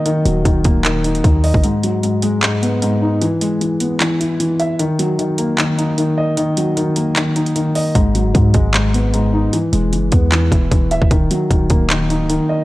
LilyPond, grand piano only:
\new Staff \with { instrumentName = "Grand piano" } { \clef bass \time 4/4 \key ees \phrygian \tempo 4 = 152 <ees ees' ees''>8 ges8 ees8 bes8 ees8 ees'8 ees8 ees''8 | aes,8 ges8 aes,8 aes8 aes,8 ces'8 aes,8 ees'8 | e8 gis8 e8 b8 e8 e'8 e8 e''8 | ees8 ges8 ees8 bes8 ees8 ees'8 ees8 ees''8 |
ees8 ges8 ees8 bes8 ees8 ees'8 ees8 ees''8 | aes,8 ges8 aes,8 aes8 aes,8 ces'8 aes,8 ees'8 | e8 gis8 e8 b8 e8 e'8 e8 e''8 | ees8 ges8 ees8 bes8 ees8 ees'8 ees8 ees''8 | }